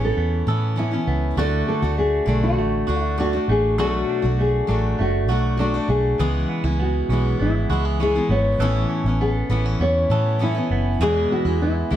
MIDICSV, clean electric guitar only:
0, 0, Header, 1, 2, 480
1, 0, Start_track
1, 0, Key_signature, 3, "major"
1, 0, Tempo, 602410
1, 1096, Time_signature, 4, 2, 24, 8
1, 9532, End_track
2, 0, Start_track
2, 0, Title_t, "Clean electric guitar"
2, 0, Program_c, 0, 27
2, 0, Note_on_c, 0, 52, 81
2, 0, Note_on_c, 0, 59, 61
2, 0, Note_on_c, 0, 61, 54
2, 130, Note_off_c, 0, 59, 0
2, 140, Note_on_c, 0, 59, 60
2, 385, Note_on_c, 0, 69, 66
2, 608, Note_off_c, 0, 61, 0
2, 618, Note_on_c, 0, 61, 58
2, 848, Note_off_c, 0, 59, 0
2, 858, Note_on_c, 0, 59, 62
2, 1094, Note_off_c, 0, 59, 0
2, 1097, Note_off_c, 0, 69, 0
2, 1097, Note_on_c, 0, 57, 88
2, 1100, Note_off_c, 0, 52, 0
2, 1100, Note_on_c, 0, 66, 75
2, 1145, Note_off_c, 0, 61, 0
2, 1341, Note_on_c, 0, 62, 60
2, 1574, Note_off_c, 0, 57, 0
2, 1578, Note_on_c, 0, 57, 56
2, 1818, Note_off_c, 0, 62, 0
2, 1821, Note_on_c, 0, 62, 59
2, 2057, Note_off_c, 0, 57, 0
2, 2060, Note_on_c, 0, 57, 56
2, 2286, Note_off_c, 0, 66, 0
2, 2289, Note_on_c, 0, 66, 60
2, 2533, Note_off_c, 0, 62, 0
2, 2536, Note_on_c, 0, 62, 52
2, 2780, Note_off_c, 0, 57, 0
2, 2783, Note_on_c, 0, 57, 58
2, 3019, Note_off_c, 0, 57, 0
2, 3023, Note_off_c, 0, 66, 0
2, 3023, Note_on_c, 0, 57, 83
2, 3026, Note_on_c, 0, 66, 71
2, 3260, Note_off_c, 0, 62, 0
2, 3263, Note_on_c, 0, 62, 58
2, 3488, Note_off_c, 0, 57, 0
2, 3497, Note_on_c, 0, 57, 59
2, 3724, Note_off_c, 0, 62, 0
2, 3733, Note_on_c, 0, 62, 59
2, 3964, Note_off_c, 0, 57, 0
2, 3974, Note_on_c, 0, 57, 66
2, 4206, Note_off_c, 0, 66, 0
2, 4215, Note_on_c, 0, 66, 68
2, 4446, Note_off_c, 0, 62, 0
2, 4455, Note_on_c, 0, 62, 61
2, 4683, Note_off_c, 0, 57, 0
2, 4692, Note_on_c, 0, 57, 58
2, 4934, Note_off_c, 0, 66, 0
2, 4936, Note_on_c, 0, 52, 90
2, 4941, Note_on_c, 0, 68, 65
2, 4981, Note_off_c, 0, 57, 0
2, 4982, Note_off_c, 0, 62, 0
2, 5172, Note_on_c, 0, 59, 59
2, 5289, Note_off_c, 0, 59, 0
2, 5289, Note_on_c, 0, 61, 45
2, 5410, Note_on_c, 0, 59, 61
2, 5644, Note_off_c, 0, 61, 0
2, 5653, Note_on_c, 0, 61, 59
2, 5890, Note_off_c, 0, 59, 0
2, 5893, Note_on_c, 0, 59, 65
2, 6132, Note_off_c, 0, 68, 0
2, 6135, Note_on_c, 0, 66, 63
2, 6254, Note_off_c, 0, 66, 0
2, 6254, Note_on_c, 0, 68, 53
2, 6373, Note_off_c, 0, 61, 0
2, 6376, Note_on_c, 0, 61, 57
2, 6612, Note_off_c, 0, 59, 0
2, 6615, Note_on_c, 0, 59, 55
2, 6849, Note_off_c, 0, 52, 0
2, 6852, Note_on_c, 0, 52, 89
2, 6854, Note_off_c, 0, 68, 0
2, 6858, Note_on_c, 0, 69, 74
2, 7085, Note_off_c, 0, 61, 0
2, 7088, Note_on_c, 0, 61, 57
2, 7112, Note_off_c, 0, 59, 0
2, 7339, Note_on_c, 0, 59, 62
2, 7571, Note_off_c, 0, 61, 0
2, 7576, Note_off_c, 0, 59, 0
2, 7576, Note_on_c, 0, 59, 60
2, 7694, Note_off_c, 0, 59, 0
2, 7694, Note_on_c, 0, 61, 48
2, 7815, Note_on_c, 0, 59, 61
2, 8050, Note_off_c, 0, 69, 0
2, 8059, Note_on_c, 0, 69, 63
2, 8289, Note_off_c, 0, 61, 0
2, 8299, Note_on_c, 0, 61, 58
2, 8535, Note_off_c, 0, 59, 0
2, 8538, Note_on_c, 0, 59, 63
2, 8772, Note_off_c, 0, 52, 0
2, 8775, Note_on_c, 0, 52, 86
2, 8777, Note_off_c, 0, 69, 0
2, 8781, Note_on_c, 0, 68, 72
2, 8825, Note_off_c, 0, 61, 0
2, 9022, Note_on_c, 0, 64, 58
2, 9258, Note_off_c, 0, 59, 0
2, 9261, Note_on_c, 0, 59, 63
2, 9484, Note_off_c, 0, 64, 0
2, 9494, Note_on_c, 0, 64, 63
2, 9532, Note_off_c, 0, 52, 0
2, 9532, Note_off_c, 0, 59, 0
2, 9532, Note_off_c, 0, 64, 0
2, 9532, Note_off_c, 0, 68, 0
2, 9532, End_track
0, 0, End_of_file